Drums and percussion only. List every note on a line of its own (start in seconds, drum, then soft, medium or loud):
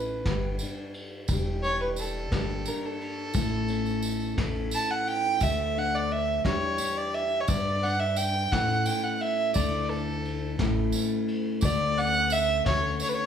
0.26 kick medium
0.26 snare medium
0.26 ride medium
0.59 ride medium
0.59 tambourine medium
0.94 ride soft
1.28 kick medium
1.28 ride medium
1.28 tambourine medium
1.64 ride medium
1.96 ride medium
1.96 tambourine medium
2.32 kick medium
2.32 snare medium
2.32 ride medium
2.66 ride medium
2.66 tambourine medium
3.01 ride soft
3.34 kick medium
3.34 ride medium
3.34 tambourine medium
3.68 ride medium
3.68 tambourine soft
3.86 tambourine soft
4.02 ride soft
4.02 tambourine medium
4.20 tambourine soft
4.38 kick medium
4.38 snare medium
4.38 ride medium
4.71 ride medium
4.71 tambourine medium
5.07 ride soft
5.40 kick medium
5.40 ride medium
5.40 tambourine medium
5.76 ride soft
6.10 ride soft
6.45 kick medium
6.45 snare medium
6.45 ride medium
6.78 ride medium
6.78 tambourine loud
7.14 ride soft
7.48 kick medium
7.48 ride medium
7.48 tambourine loud
7.83 ride medium
8.16 ride medium
8.16 tambourine loud
8.52 kick medium
8.52 snare medium
8.52 ride medium
8.86 ride medium
8.86 tambourine loud
9.22 ride medium
9.54 kick medium
9.54 ride medium
9.54 tambourine loud
9.91 ride medium
10.25 ride soft
10.59 kick medium
10.59 snare loud
10.59 ride medium
10.92 ride medium
10.92 tambourine loud
11.28 ride soft
11.61 kick medium
11.61 ride medium
11.61 tambourine medium
11.97 ride medium
12.30 ride soft
12.30 tambourine loud
12.66 kick medium
12.66 snare loud
12.66 ride medium
13.00 ride medium
13.00 tambourine medium